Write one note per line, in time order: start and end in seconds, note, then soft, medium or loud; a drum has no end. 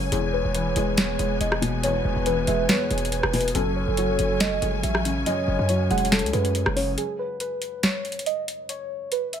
0.00 0.11 F#1 loud
0.00 0.14 F#2 medium
0.00 0.14 C#3 medium
0.00 0.14 F#3 medium
0.00 0.14 G#3 loud
0.00 0.12 A3 medium
0.00 3.51 G#5 medium
0.12 0.43 E1 loud
0.12 1.19 E2 medium
0.12 3.51 E3 medium
0.12 3.51 G#3 medium
0.12 3.51 B3 medium
0.12 0.29 G#4 medium
0.12 1.37 C#5 loud
0.12 closed hi-hat medium
0.33 0.50 B4 medium
0.45 0.75 E1 loud
0.55 1.62 E3 medium
0.55 0.95 B4 medium
0.55 closed hi-hat medium
0.76 1.17 E1 loud
0.76 1.18 G#3 loud
0.76 closed hi-hat medium
0.97 2.05 B3 medium
0.97 1.38 C#5 medium
0.97 snare loud
0.97 closed hi-hat medium
1.19 1.40 E1 loud
1.19 2.26 G#3 medium
1.19 closed hi-hat medium
1.41 2.02 E1 loud
1.41 1.57 D#5 medium
1.41 closed hi-hat medium
1.52 cross-stick loud
1.62 2.69 B2 medium
1.62 closed hi-hat medium
1.83 2.91 E2 medium
1.83 3.51 B4 loud
1.83 2.24 C#5 loud
1.83 closed hi-hat medium
2.05 2.16 E1 loud
2.16 2.46 E1 loud
2.26 3.33 E3 medium
2.26 2.43 B4 medium
2.26 closed hi-hat medium
2.47 2.68 E1 loud
2.47 2.89 G#3 loud
2.47 2.64 E5 medium
2.47 closed hi-hat medium
2.69 3.55 B3 medium
2.69 3.30 C#5 medium
2.69 snare loud
2.69 closed hi-hat medium
2.90 3.22 E1 loud
2.90 3.55 G#3 medium
2.90 closed hi-hat medium
2.98 closed hi-hat medium
3.05 closed hi-hat medium
3.12 closed hi-hat medium
3.23 3.54 E1 loud
3.23 cross-stick loud
3.33 3.55 B2 medium
3.33 3.50 B4 medium
3.33 closed hi-hat soft
3.33 open hi-hat medium
3.41 closed hi-hat medium
3.48 closed hi-hat medium
3.55 3.86 F#1 loud
3.55 4.62 F#2 medium
3.55 6.94 F#3 medium
3.55 6.94 C#4 medium
3.55 3.72 A4 loud
3.55 4.80 A4 loud
3.55 6.94 G#5 medium
3.55 closed hi-hat medium
3.76 3.93 C#5 medium
3.88 4.18 F#1 loud
3.97 5.05 F#3 medium
3.97 4.38 C#5 loud
3.97 closed hi-hat medium
4.19 4.60 F#1 loud
4.19 closed hi-hat medium
4.40 5.48 A3 medium
4.40 4.81 D#5 medium
4.40 snare loud
4.40 closed hi-hat medium
4.62 4.83 F#1 loud
4.62 5.69 G#3 medium
4.62 closed hi-hat medium
4.83 5.25 A1 loud
4.83 5.00 E5 medium
4.83 closed hi-hat medium
4.95 cross-stick loud
5.05 6.12 C#3 medium
5.05 closed hi-hat medium
5.26 6.33 F#2 medium
5.26 6.94 C#5 loud
5.26 5.67 D#5 loud
5.26 closed hi-hat medium
5.48 5.59 F#1 loud
5.59 5.89 F#2 loud
5.69 6.77 F#3 medium
5.69 5.86 C#5 medium
5.69 closed hi-hat medium
5.90 6.25 E1 loud
5.90 6.31 G#3 loud
5.90 6.07 F#5 medium
5.90 closed hi-hat soft
5.98 closed hi-hat medium
6.05 closed hi-hat medium
6.11 6.97 A3 medium
6.11 6.29 A4 medium
6.11 snare loud
6.11 closed hi-hat medium
6.19 closed hi-hat medium
6.23 6.33 C#2 loud
6.23 closed hi-hat medium
6.33 6.65 F#2 loud
6.33 6.97 G#3 medium
6.33 6.74 B4 medium
6.33 closed hi-hat medium
6.45 closed hi-hat medium
6.55 closed hi-hat medium
6.66 6.96 F#1 loud
6.66 cross-stick loud
6.76 6.98 C#3 medium
6.76 6.93 C#5 medium
6.76 open hi-hat medium
6.98 7.14 G#4 medium
6.98 closed hi-hat medium
7.19 7.36 B4 medium
7.40 7.81 B4 medium
7.40 closed hi-hat medium
7.62 closed hi-hat medium
7.83 8.24 C#5 medium
7.83 snare loud
7.83 closed hi-hat medium
8.05 closed hi-hat soft
8.12 closed hi-hat medium
8.19 closed hi-hat medium
8.26 8.43 D#5 medium
8.26 closed hi-hat medium
8.48 closed hi-hat medium
8.69 9.09 C#5 loud
8.69 closed hi-hat medium
9.12 9.29 B4 medium
9.12 closed hi-hat medium
9.33 9.40 E5 medium
9.33 closed hi-hat medium